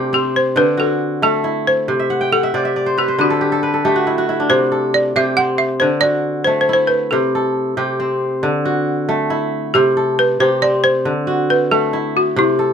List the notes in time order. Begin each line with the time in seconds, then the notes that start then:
Already playing: C3 A3 D4 E4 G4 A4
0.13 C4 G4
0.36 C5
0.56 D3 B4
0.77 F#4 A4
1.22 A3 A4
1.44 E4
1.67 C5
1.88 C3
1.99 E5
2.10 F#5
2.21 G5
2.32 A4 F#5
2.43 E5
2.54 C3 D5
2.65 E5
2.76 D5
2.86 C5
2.98 G4 B4
3.08 C5
3.19 D3 F#4 B4
3.30 A4
3.41 G4
3.52 A4
3.63 B4
3.74 A4
3.85 A3 G4
3.96 F#4
4.07 E4
4.18 F#4
4.29 E4
4.40 D4
4.50 C3 C5
4.72 A4
4.94 D5
5.16 C3 G4 E5
5.37 C4 F#5
5.58 E5
5.80 D3 C5
6.01 F#4 D5
6.44 A3 C5
6.61 C5
6.69 E4
6.73 C5
6.87 B4
7.11 C3 A4
7.35 A4
7.77 C3 G4
8.00 C4
8.43 D3
8.65 F#4
9.09 A3
9.30 E4
9.74 C3 G4
9.97 A4
10.19 B4
10.40 C3 G4 C5
10.62 C4 D5
10.84 C5
11.05 D3
11.27 F#4
11.50 B4
11.71 A3 A4
11.93 E4
12.17 F#4
12.36 C3 E4
12.59 A4